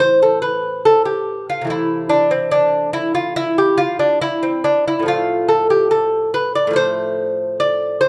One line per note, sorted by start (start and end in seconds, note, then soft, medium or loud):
0.00 1.60 A2 soft
0.00 1.61 E3 soft
0.00 1.63 C4 soft
0.00 0.21 C5 medium
0.22 0.41 A4 medium
0.42 0.83 B4 medium
0.85 1.05 A4 medium
1.05 1.46 G4 medium
1.50 1.70 F4 medium
1.61 4.99 C3 medium
1.61 4.99 E3 soft
1.67 5.02 A3 soft
1.67 2.09 E4 medium
2.09 2.30 D4 medium
2.31 2.52 C4 medium
2.51 2.92 D4 medium
2.93 3.14 E4 medium
3.15 3.36 F4 medium
3.36 3.57 E4 loud
3.58 3.79 G4 medium
3.78 3.99 F4 medium
3.99 4.21 D4 medium
4.21 4.43 E4 medium
4.43 4.64 C4 medium
4.64 4.85 D4 medium
4.88 5.08 E4 medium
4.99 6.66 A2 medium
4.99 6.69 F3 soft
5.06 6.71 A3 soft
5.06 5.48 F4 medium
5.49 5.70 A4 medium
5.70 5.90 G4 medium
5.91 6.31 A4 medium
6.34 6.55 B4 medium
6.55 6.76 D5 medium
6.67 8.09 A2 medium
6.67 8.09 F3 soft
6.73 8.09 A3 soft
6.73 7.57 C5 loud
7.60 8.00 D5 medium
8.01 8.09 C5 medium